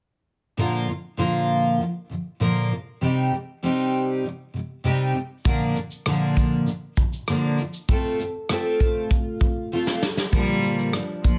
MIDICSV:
0, 0, Header, 1, 5, 480
1, 0, Start_track
1, 0, Key_signature, -2, "major"
1, 0, Tempo, 609756
1, 455, Time_signature, 4, 2, 24, 8
1, 8962, End_track
2, 0, Start_track
2, 0, Title_t, "Nylon-string guitar"
2, 0, Program_c, 0, 24
2, 8127, Note_on_c, 0, 53, 68
2, 8355, Note_off_c, 0, 53, 0
2, 8364, Note_on_c, 0, 53, 49
2, 8605, Note_on_c, 0, 62, 50
2, 8846, Note_on_c, 0, 58, 50
2, 8962, Note_off_c, 0, 53, 0
2, 8962, Note_off_c, 0, 58, 0
2, 8962, Note_off_c, 0, 62, 0
2, 8962, End_track
3, 0, Start_track
3, 0, Title_t, "Steel-string acoustic guitar"
3, 0, Program_c, 1, 25
3, 450, Note_on_c, 1, 46, 64
3, 453, Note_on_c, 1, 50, 69
3, 458, Note_on_c, 1, 53, 60
3, 459, Note_on_c, 1, 58, 64
3, 463, Note_on_c, 1, 65, 66
3, 465, Note_on_c, 1, 70, 62
3, 679, Note_off_c, 1, 46, 0
3, 688, Note_on_c, 1, 46, 37
3, 692, Note_off_c, 1, 50, 0
3, 696, Note_off_c, 1, 53, 0
3, 697, Note_off_c, 1, 58, 0
3, 699, Note_off_c, 1, 65, 0
3, 700, Note_off_c, 1, 70, 0
3, 701, Note_on_c, 1, 50, 45
3, 712, Note_on_c, 1, 53, 41
3, 884, Note_off_c, 1, 46, 0
3, 890, Note_off_c, 1, 50, 0
3, 895, Note_off_c, 1, 53, 0
3, 923, Note_on_c, 1, 46, 60
3, 928, Note_on_c, 1, 50, 67
3, 932, Note_on_c, 1, 53, 70
3, 934, Note_on_c, 1, 58, 70
3, 940, Note_on_c, 1, 65, 75
3, 943, Note_on_c, 1, 70, 76
3, 1399, Note_off_c, 1, 46, 0
3, 1409, Note_on_c, 1, 46, 47
3, 1411, Note_off_c, 1, 50, 0
3, 1413, Note_off_c, 1, 53, 0
3, 1414, Note_off_c, 1, 58, 0
3, 1417, Note_off_c, 1, 65, 0
3, 1419, Note_off_c, 1, 70, 0
3, 1421, Note_on_c, 1, 50, 57
3, 1430, Note_on_c, 1, 53, 55
3, 1604, Note_off_c, 1, 46, 0
3, 1610, Note_off_c, 1, 50, 0
3, 1614, Note_off_c, 1, 53, 0
3, 1649, Note_on_c, 1, 46, 40
3, 1661, Note_on_c, 1, 50, 46
3, 1670, Note_on_c, 1, 53, 44
3, 1843, Note_off_c, 1, 46, 0
3, 1850, Note_off_c, 1, 50, 0
3, 1854, Note_off_c, 1, 53, 0
3, 1888, Note_on_c, 1, 46, 68
3, 1891, Note_on_c, 1, 50, 69
3, 1896, Note_on_c, 1, 53, 73
3, 1900, Note_on_c, 1, 58, 67
3, 1901, Note_on_c, 1, 65, 68
3, 1904, Note_on_c, 1, 70, 72
3, 2124, Note_off_c, 1, 50, 0
3, 2127, Note_on_c, 1, 48, 45
3, 2131, Note_off_c, 1, 46, 0
3, 2135, Note_off_c, 1, 53, 0
3, 2137, Note_off_c, 1, 58, 0
3, 2138, Note_off_c, 1, 65, 0
3, 2139, Note_off_c, 1, 70, 0
3, 2150, Note_on_c, 1, 55, 48
3, 2323, Note_off_c, 1, 48, 0
3, 2334, Note_off_c, 1, 55, 0
3, 2370, Note_on_c, 1, 48, 73
3, 2374, Note_on_c, 1, 55, 68
3, 2379, Note_on_c, 1, 60, 72
3, 2385, Note_on_c, 1, 63, 73
3, 2389, Note_on_c, 1, 67, 75
3, 2602, Note_off_c, 1, 48, 0
3, 2611, Note_on_c, 1, 48, 40
3, 2614, Note_off_c, 1, 55, 0
3, 2617, Note_off_c, 1, 60, 0
3, 2619, Note_off_c, 1, 63, 0
3, 2621, Note_off_c, 1, 67, 0
3, 2804, Note_off_c, 1, 48, 0
3, 2854, Note_on_c, 1, 48, 69
3, 2858, Note_on_c, 1, 55, 74
3, 2863, Note_on_c, 1, 60, 77
3, 2867, Note_on_c, 1, 63, 79
3, 2871, Note_on_c, 1, 67, 77
3, 3323, Note_off_c, 1, 48, 0
3, 3333, Note_on_c, 1, 48, 49
3, 3336, Note_off_c, 1, 55, 0
3, 3338, Note_off_c, 1, 60, 0
3, 3340, Note_off_c, 1, 63, 0
3, 3342, Note_off_c, 1, 67, 0
3, 3356, Note_on_c, 1, 55, 59
3, 3525, Note_off_c, 1, 48, 0
3, 3537, Note_off_c, 1, 55, 0
3, 3571, Note_on_c, 1, 48, 40
3, 3595, Note_on_c, 1, 55, 50
3, 3764, Note_off_c, 1, 48, 0
3, 3776, Note_off_c, 1, 55, 0
3, 3809, Note_on_c, 1, 48, 75
3, 3816, Note_on_c, 1, 55, 73
3, 3819, Note_on_c, 1, 60, 77
3, 3820, Note_on_c, 1, 63, 73
3, 3827, Note_on_c, 1, 67, 68
3, 4039, Note_off_c, 1, 48, 0
3, 4048, Note_on_c, 1, 48, 38
3, 4055, Note_off_c, 1, 55, 0
3, 4056, Note_off_c, 1, 60, 0
3, 4057, Note_off_c, 1, 63, 0
3, 4060, Note_off_c, 1, 67, 0
3, 4071, Note_on_c, 1, 55, 45
3, 4242, Note_off_c, 1, 48, 0
3, 4254, Note_off_c, 1, 55, 0
3, 4287, Note_on_c, 1, 46, 67
3, 4292, Note_on_c, 1, 50, 62
3, 4297, Note_on_c, 1, 53, 64
3, 4300, Note_on_c, 1, 58, 69
3, 4304, Note_on_c, 1, 62, 77
3, 4304, Note_on_c, 1, 70, 75
3, 4515, Note_off_c, 1, 46, 0
3, 4525, Note_on_c, 1, 46, 44
3, 4528, Note_off_c, 1, 50, 0
3, 4535, Note_off_c, 1, 53, 0
3, 4536, Note_off_c, 1, 58, 0
3, 4537, Note_on_c, 1, 50, 47
3, 4538, Note_off_c, 1, 62, 0
3, 4538, Note_off_c, 1, 70, 0
3, 4547, Note_on_c, 1, 53, 45
3, 4721, Note_off_c, 1, 46, 0
3, 4727, Note_off_c, 1, 50, 0
3, 4731, Note_off_c, 1, 53, 0
3, 4768, Note_on_c, 1, 46, 72
3, 4771, Note_on_c, 1, 50, 75
3, 4774, Note_on_c, 1, 53, 72
3, 4778, Note_on_c, 1, 58, 72
3, 4781, Note_on_c, 1, 70, 77
3, 4782, Note_on_c, 1, 62, 71
3, 5235, Note_off_c, 1, 46, 0
3, 5245, Note_on_c, 1, 46, 52
3, 5249, Note_off_c, 1, 50, 0
3, 5255, Note_off_c, 1, 58, 0
3, 5257, Note_off_c, 1, 62, 0
3, 5257, Note_off_c, 1, 70, 0
3, 5259, Note_on_c, 1, 50, 60
3, 5265, Note_off_c, 1, 53, 0
3, 5268, Note_on_c, 1, 53, 62
3, 5440, Note_off_c, 1, 46, 0
3, 5447, Note_off_c, 1, 50, 0
3, 5452, Note_off_c, 1, 53, 0
3, 5489, Note_on_c, 1, 46, 48
3, 5506, Note_on_c, 1, 50, 47
3, 5514, Note_on_c, 1, 53, 45
3, 5683, Note_off_c, 1, 46, 0
3, 5691, Note_off_c, 1, 50, 0
3, 5695, Note_off_c, 1, 53, 0
3, 5732, Note_on_c, 1, 46, 75
3, 5739, Note_on_c, 1, 50, 78
3, 5740, Note_on_c, 1, 53, 74
3, 5744, Note_on_c, 1, 58, 69
3, 5748, Note_on_c, 1, 62, 70
3, 5749, Note_on_c, 1, 70, 69
3, 5963, Note_off_c, 1, 46, 0
3, 5972, Note_on_c, 1, 46, 46
3, 5975, Note_off_c, 1, 50, 0
3, 5976, Note_off_c, 1, 53, 0
3, 5978, Note_off_c, 1, 58, 0
3, 5980, Note_off_c, 1, 62, 0
3, 5980, Note_off_c, 1, 70, 0
3, 5987, Note_on_c, 1, 50, 41
3, 5998, Note_on_c, 1, 53, 50
3, 6164, Note_off_c, 1, 46, 0
3, 6171, Note_off_c, 1, 50, 0
3, 6177, Note_off_c, 1, 53, 0
3, 6212, Note_on_c, 1, 57, 67
3, 6219, Note_on_c, 1, 60, 65
3, 6224, Note_on_c, 1, 65, 71
3, 6229, Note_on_c, 1, 69, 71
3, 6440, Note_off_c, 1, 57, 0
3, 6450, Note_on_c, 1, 57, 44
3, 6455, Note_off_c, 1, 60, 0
3, 6458, Note_off_c, 1, 65, 0
3, 6460, Note_off_c, 1, 69, 0
3, 6475, Note_on_c, 1, 60, 43
3, 6642, Note_off_c, 1, 57, 0
3, 6655, Note_off_c, 1, 60, 0
3, 6688, Note_on_c, 1, 57, 73
3, 6694, Note_on_c, 1, 60, 76
3, 6700, Note_on_c, 1, 65, 80
3, 6706, Note_on_c, 1, 69, 76
3, 7160, Note_off_c, 1, 57, 0
3, 7170, Note_on_c, 1, 57, 56
3, 7172, Note_off_c, 1, 60, 0
3, 7178, Note_off_c, 1, 69, 0
3, 7192, Note_on_c, 1, 60, 61
3, 7362, Note_off_c, 1, 57, 0
3, 7374, Note_off_c, 1, 60, 0
3, 7408, Note_on_c, 1, 57, 46
3, 7432, Note_on_c, 1, 60, 53
3, 7602, Note_off_c, 1, 57, 0
3, 7613, Note_off_c, 1, 60, 0
3, 7651, Note_on_c, 1, 57, 70
3, 7657, Note_on_c, 1, 60, 70
3, 7658, Note_off_c, 1, 65, 0
3, 7662, Note_on_c, 1, 65, 84
3, 7668, Note_on_c, 1, 69, 70
3, 7877, Note_off_c, 1, 57, 0
3, 7886, Note_on_c, 1, 57, 43
3, 7894, Note_off_c, 1, 60, 0
3, 7896, Note_off_c, 1, 65, 0
3, 7899, Note_off_c, 1, 69, 0
3, 7911, Note_on_c, 1, 60, 43
3, 8081, Note_off_c, 1, 57, 0
3, 8093, Note_off_c, 1, 60, 0
3, 8125, Note_on_c, 1, 46, 55
3, 8131, Note_on_c, 1, 50, 62
3, 8133, Note_on_c, 1, 53, 64
3, 8138, Note_on_c, 1, 58, 68
3, 8138, Note_on_c, 1, 62, 65
3, 8144, Note_on_c, 1, 70, 75
3, 8594, Note_off_c, 1, 46, 0
3, 8603, Note_on_c, 1, 46, 48
3, 8609, Note_off_c, 1, 50, 0
3, 8612, Note_off_c, 1, 53, 0
3, 8614, Note_off_c, 1, 58, 0
3, 8615, Note_off_c, 1, 62, 0
3, 8617, Note_off_c, 1, 70, 0
3, 8618, Note_on_c, 1, 50, 53
3, 8628, Note_on_c, 1, 53, 54
3, 8799, Note_off_c, 1, 46, 0
3, 8806, Note_off_c, 1, 50, 0
3, 8811, Note_off_c, 1, 53, 0
3, 8845, Note_on_c, 1, 46, 40
3, 8858, Note_on_c, 1, 50, 40
3, 8867, Note_on_c, 1, 53, 45
3, 8962, Note_off_c, 1, 46, 0
3, 8962, Note_off_c, 1, 50, 0
3, 8962, Note_off_c, 1, 53, 0
3, 8962, End_track
4, 0, Start_track
4, 0, Title_t, "Cello"
4, 0, Program_c, 2, 42
4, 8133, Note_on_c, 2, 55, 90
4, 8580, Note_off_c, 2, 55, 0
4, 8856, Note_on_c, 2, 53, 72
4, 8962, Note_off_c, 2, 53, 0
4, 8962, End_track
5, 0, Start_track
5, 0, Title_t, "Drums"
5, 4293, Note_on_c, 9, 36, 86
5, 4293, Note_on_c, 9, 82, 53
5, 4371, Note_off_c, 9, 36, 0
5, 4372, Note_off_c, 9, 82, 0
5, 4536, Note_on_c, 9, 82, 43
5, 4615, Note_off_c, 9, 82, 0
5, 4653, Note_on_c, 9, 82, 40
5, 4732, Note_off_c, 9, 82, 0
5, 4770, Note_on_c, 9, 37, 94
5, 4774, Note_on_c, 9, 82, 66
5, 4849, Note_off_c, 9, 37, 0
5, 4853, Note_off_c, 9, 82, 0
5, 5012, Note_on_c, 9, 82, 46
5, 5013, Note_on_c, 9, 36, 66
5, 5091, Note_off_c, 9, 82, 0
5, 5092, Note_off_c, 9, 36, 0
5, 5251, Note_on_c, 9, 82, 53
5, 5330, Note_off_c, 9, 82, 0
5, 5485, Note_on_c, 9, 82, 39
5, 5489, Note_on_c, 9, 36, 76
5, 5564, Note_off_c, 9, 82, 0
5, 5568, Note_off_c, 9, 36, 0
5, 5611, Note_on_c, 9, 82, 42
5, 5689, Note_off_c, 9, 82, 0
5, 5729, Note_on_c, 9, 37, 91
5, 5729, Note_on_c, 9, 82, 61
5, 5807, Note_off_c, 9, 82, 0
5, 5808, Note_off_c, 9, 37, 0
5, 5967, Note_on_c, 9, 82, 37
5, 6046, Note_off_c, 9, 82, 0
5, 6089, Note_on_c, 9, 82, 54
5, 6168, Note_off_c, 9, 82, 0
5, 6209, Note_on_c, 9, 36, 85
5, 6209, Note_on_c, 9, 82, 50
5, 6287, Note_off_c, 9, 82, 0
5, 6288, Note_off_c, 9, 36, 0
5, 6452, Note_on_c, 9, 82, 41
5, 6531, Note_off_c, 9, 82, 0
5, 6686, Note_on_c, 9, 37, 93
5, 6691, Note_on_c, 9, 82, 67
5, 6765, Note_off_c, 9, 37, 0
5, 6769, Note_off_c, 9, 82, 0
5, 6929, Note_on_c, 9, 82, 44
5, 6930, Note_on_c, 9, 36, 72
5, 7007, Note_off_c, 9, 82, 0
5, 7009, Note_off_c, 9, 36, 0
5, 7169, Note_on_c, 9, 36, 73
5, 7171, Note_on_c, 9, 82, 54
5, 7248, Note_off_c, 9, 36, 0
5, 7249, Note_off_c, 9, 82, 0
5, 7403, Note_on_c, 9, 82, 41
5, 7407, Note_on_c, 9, 36, 82
5, 7481, Note_off_c, 9, 82, 0
5, 7485, Note_off_c, 9, 36, 0
5, 7770, Note_on_c, 9, 38, 50
5, 7848, Note_off_c, 9, 38, 0
5, 7892, Note_on_c, 9, 38, 72
5, 7970, Note_off_c, 9, 38, 0
5, 8008, Note_on_c, 9, 38, 68
5, 8087, Note_off_c, 9, 38, 0
5, 8130, Note_on_c, 9, 36, 86
5, 8132, Note_on_c, 9, 82, 49
5, 8208, Note_off_c, 9, 36, 0
5, 8211, Note_off_c, 9, 82, 0
5, 8375, Note_on_c, 9, 82, 42
5, 8454, Note_off_c, 9, 82, 0
5, 8491, Note_on_c, 9, 82, 41
5, 8570, Note_off_c, 9, 82, 0
5, 8607, Note_on_c, 9, 37, 93
5, 8611, Note_on_c, 9, 82, 66
5, 8686, Note_off_c, 9, 37, 0
5, 8690, Note_off_c, 9, 82, 0
5, 8852, Note_on_c, 9, 36, 73
5, 8852, Note_on_c, 9, 82, 44
5, 8930, Note_off_c, 9, 36, 0
5, 8931, Note_off_c, 9, 82, 0
5, 8962, End_track
0, 0, End_of_file